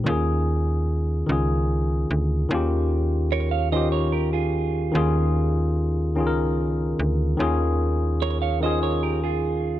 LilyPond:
<<
  \new Staff \with { instrumentName = "Clean electric guitar" } { \time 6/8 \key ees \mixolydian \tempo 4. = 49 r2. | r4 <bes' des''>16 <des'' f''>16 <c'' ees''>16 <bes' des''>16 <g' bes'>16 <f' aes'>8.~ | <f' aes'>8. r2 r16 | r4 <bes' des''>16 <des'' f''>16 <c'' ees''>16 <bes' des''>16 <g' bes'>16 <f' aes'>8. | }
  \new Staff \with { instrumentName = "Tine electric piano" } { \time 6/8 \key ees \mixolydian <ees des' f' aes'>4 r8 <ees des' f' aes'>4 r8 | <ees des' f' g'>4 r8 <ees des' f' g'>4 r8 | <ees des' f' aes'>4 r8 <ees des' f' aes' bes'>4 r8 | <ees des' f' aes'>4 r8 <ees des' f' aes'>4 r8 | }
  \new Staff \with { instrumentName = "FM bass" } { \clef bass \time 6/8 \key ees \mixolydian ees,4. des,4 d,8 | ees,2. | ees,4. des,4 d,8 | ees,2. | }
>>